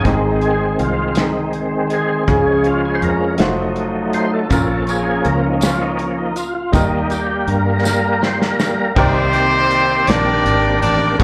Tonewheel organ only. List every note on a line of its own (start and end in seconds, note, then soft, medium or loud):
0.06 2.24 D#3 soft
0.06 2.25 G#3 soft
0.06 2.25 C4 medium
0.06 0.41 D#4 medium
0.42 0.77 G#4 medium
0.80 1.18 F4 medium
1.18 1.52 D#4 medium
1.91 2.68 G#4 medium
2.28 3.35 F3 medium
2.28 3.36 G#3 soft
2.28 3.36 C#4 medium
2.67 2.86 F4 medium
2.85 2.96 G#4 medium
2.95 3.02 C5 medium
3.03 3.37 A#4 medium
3.38 4.46 F#3 soft
3.38 4.46 A3 soft
3.38 4.47 D#4 medium
4.14 4.31 C5 loud
4.33 4.85 A4 medium
4.50 5.98 F3 medium
4.50 5.98 A#3 medium
4.50 5.99 C#4 medium
4.90 5.27 G#4 medium
5.26 5.45 A#4 medium
5.46 5.63 D#4 medium
5.65 5.83 F4 medium
5.82 6.01 D#4 medium
5.99 6.33 F3 soft
5.99 6.33 A#3 soft
5.99 6.17 C#4 medium
6.18 6.37 D#4 medium
6.36 6.54 F4 medium
6.55 6.72 F4 medium
6.72 8.92 G3 medium
6.72 8.92 A#3 soft
6.72 7.12 D#4 medium
7.11 7.29 G4 medium
7.30 7.49 G4 medium
7.49 7.84 A#4 medium
7.86 8.24 A#4 medium
8.22 8.32 C5 medium
8.33 8.41 C5 medium
8.42 8.93 A#4 medium
8.97 11.16 D#3 medium
8.97 11.16 A#3 medium
8.97 11.16 C4 medium
8.97 11.16 G4 medium
8.97 11.16 D5 medium